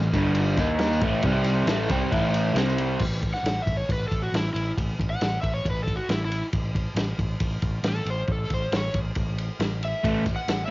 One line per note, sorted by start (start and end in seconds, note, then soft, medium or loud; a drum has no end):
0.00 0.12 A1 medium
0.13 0.55 G1 medium
0.13 0.58 G2 loud
0.13 0.57 D3 medium
0.13 0.58 G3 loud
0.13 kick loud
0.13 ride medium
0.13 tambourine medium
0.35 ride loud
0.35 tambourine soft
0.57 0.99 D#2 loud
0.57 1.01 D#3 medium
0.57 1.02 A#3 loud
0.57 1.02 D#4 loud
0.57 kick loud
0.57 snare soft
0.57 ride medium
0.57 tambourine medium
0.79 snare loud
0.79 ride loud
0.79 tambourine medium
0.93 tambourine medium
1.01 1.22 A1 medium
1.01 1.24 A2 medium
1.01 1.24 E3 loud
1.01 1.24 A3 loud
1.01 kick loud
1.01 ride medium
1.15 tambourine soft
1.23 1.65 C2 loud
1.23 1.68 C3 loud
1.23 1.68 G3 loud
1.23 1.68 C4 loud
1.23 kick loud
1.23 ride loud
1.23 tambourine soft
1.44 ride medium
1.44 tambourine medium
1.57 tambourine soft
1.66 1.88 A1 loud
1.66 1.90 A2 medium
1.66 1.90 E3 medium
1.66 1.90 A3 loud
1.66 snare loud
1.66 ride loud
1.66 tambourine medium
1.89 2.10 C2 medium
1.89 2.11 C3 medium
1.89 2.12 G3 loud
1.89 2.12 C4 loud
1.89 kick loud
1.89 ride medium
1.89 tambourine medium
2.11 2.53 A1 medium
2.11 2.55 A2 medium
2.11 2.56 E3 loud
2.11 2.56 A3 loud
2.11 kick loud
2.11 ride loud
2.11 tambourine soft
2.24 tambourine soft
2.34 ride medium
2.34 tambourine medium
2.47 tambourine soft
2.54 2.96 C2 medium
2.54 2.99 C3 medium
2.54 3.00 G3 loud
2.54 3.01 C4 loud
2.54 snare loud
2.54 ride medium
2.54 tambourine medium
2.69 tambourine medium
2.78 ride medium
2.78 tambourine soft
2.92 tambourine soft
2.99 3.33 A1 medium
2.99 kick loud
2.99 crash loud
3.23 kick medium
3.23 ride medium
3.34 3.60 F#5 loud
3.34 snare soft
3.43 3.60 A1 medium
3.43 snare loud
3.43 ride medium
3.62 3.82 A1 medium
3.62 3.75 E5 medium
3.67 kick loud
3.67 ride medium
3.77 3.90 C#5 medium
3.89 4.05 A1 medium
3.89 4.05 B4 medium
3.89 kick loud
3.89 ride medium
4.08 4.27 A1 medium
4.08 4.20 A4 medium
4.08 kick medium
4.08 ride medium
4.22 4.35 F#4 medium
4.32 4.49 A1 medium
4.32 4.49 E4 medium
4.32 snare loud
4.32 ride medium
4.53 4.71 A1 medium
4.53 4.72 E4 medium
4.53 ride medium
4.77 4.93 A1 medium
4.77 kick loud
4.77 ride medium
4.99 5.15 A1 loud
4.99 kick medium
4.99 ride medium
5.10 5.37 F#5 loud
5.21 5.37 A1 medium
5.21 snare loud
5.21 ride medium
5.41 5.59 A1 medium
5.41 5.53 E5 medium
5.41 kick medium
5.41 ride medium
5.54 5.66 C#5 loud
5.65 5.97 A1 medium
5.65 kick loud
5.65 ride medium
5.70 5.82 B4 medium
5.84 5.96 A4 medium
5.84 kick medium
5.88 ride medium
5.96 6.10 F#4 medium
6.09 6.41 A1 medium
6.09 6.24 E4 medium
6.09 snare loud
6.09 ride medium
6.25 6.46 E4 medium
6.32 ride medium
6.53 6.85 A1 medium
6.53 kick loud
6.53 ride loud
6.75 kick medium
6.75 ride medium
6.94 7.12 A1 medium
6.94 snare loud
6.94 ride loud
7.18 7.34 A1 medium
7.18 kick medium
7.18 ride medium
7.40 7.57 A1 medium
7.40 kick loud
7.40 ride loud
7.62 7.79 A1 medium
7.62 kick medium
7.62 ride medium
7.83 8.00 A1 medium
7.83 snare loud
7.83 ride loud
7.89 8.08 A4 loud
8.05 8.22 A1 medium
8.05 ride medium
8.10 8.30 C5 medium
8.27 8.44 A1 loud
8.27 kick loud
8.27 ride medium
8.32 8.52 A4 medium
8.50 8.66 A1 medium
8.50 8.74 C5 medium
8.50 kick medium
8.50 ride medium
8.72 8.88 A1 medium
8.72 snare loud
8.72 ride loud
8.77 8.96 C#5 loud
8.94 9.10 A1 medium
8.94 kick medium
8.94 ride medium
9.15 9.49 A1 medium
9.15 kick loud
9.15 ride medium
9.38 ride medium
9.60 9.92 A1 medium
9.60 snare loud
9.60 ride medium
9.83 10.05 E5 medium
9.83 ride medium
10.04 10.36 A1 medium
10.04 10.21 A2 loud
10.04 10.22 E3 loud
10.04 10.22 A3 loud
10.04 kick loud
10.04 ride medium
10.26 kick medium
10.26 ride medium
10.26 tambourine medium
10.36 10.63 F#5 loud
10.36 tambourine soft
10.48 10.64 A1 medium
10.48 snare loud
10.48 ride medium
10.48 tambourine medium
10.66 10.71 E5 medium